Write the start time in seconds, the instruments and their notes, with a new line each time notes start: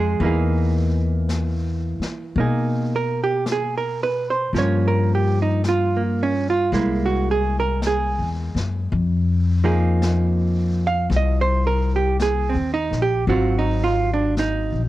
Already playing: upright bass F2, hollow-body jazz guitar G#3 A3 G#4
0.20 upright bass E2, hollow-body jazz guitar E3 A#3, brush sweep
0.24 hollow-body jazz guitar D#4 G#4
1.29 brush sweep, snare, hi-hat pedal
1.99 muted upright bass stroke, snare
2.36 upright bass B2, hollow-body jazz guitar A#3, brush sweep
2.40 hollow-body jazz guitar D#4 G#4
2.96 hollow-body jazz guitar A#4
3.24 hollow-body jazz guitar G4
3.46 brush sweep, snare, hi-hat pedal
3.52 hollow-body jazz guitar G#4
3.78 hollow-body jazz guitar A#4
4.03 hollow-body jazz guitar B4
4.30 hollow-body jazz guitar C5
4.53 upright bass G2, hollow-body jazz guitar F3 A#3, brush sweep, snare
4.59 hollow-body jazz guitar C#4 C#5
4.88 hollow-body jazz guitar A#4
5.15 hollow-body jazz guitar G4
5.42 hollow-body jazz guitar D#4
5.64 brush sweep, snare, hi-hat pedal
5.69 hollow-body jazz guitar F4
5.97 hollow-body jazz guitar A#3
6.23 hollow-body jazz guitar C#4
6.50 hollow-body jazz guitar F4
6.72 upright bass C2, hollow-body jazz guitar G#3 A#3 E4, brush sweep, snare
7.06 hollow-body jazz guitar F#4
7.31 hollow-body jazz guitar G#4
7.60 hollow-body jazz guitar A#4
7.82 brush sweep, snare, hi-hat pedal
7.87 hollow-body jazz guitar G#4
8.18 upright bass E2
8.55 upright bass F#2, snare
8.92 upright bass F2, brush sweep
9.64 hollow-body jazz guitar F3 A#3 D#4 G#4
10.02 brush sweep, snare, hi-hat pedal
10.87 hollow-body jazz guitar F5
11.10 upright bass C2, brush sweep, snare
11.17 hollow-body jazz guitar D#5
11.41 hollow-body jazz guitar C5
11.67 hollow-body jazz guitar A#4
11.96 hollow-body jazz guitar G4
12.20 hollow-body jazz guitar G#4, brush sweep, snare, hi-hat pedal
12.49 hollow-body jazz guitar C4
12.55 upright bass D#2
12.74 hollow-body jazz guitar D#4
12.91 upright bass A#1, snare
13.02 hollow-body jazz guitar G4
13.27 upright bass G#1, hollow-body jazz guitar F#3 C4 F4 F#4, brush sweep
13.59 hollow-body jazz guitar D#4
13.84 hollow-body jazz guitar F4
14.13 hollow-body jazz guitar D4
14.37 hollow-body jazz guitar D#4, brush sweep, snare, hi-hat pedal
14.72 upright bass A#1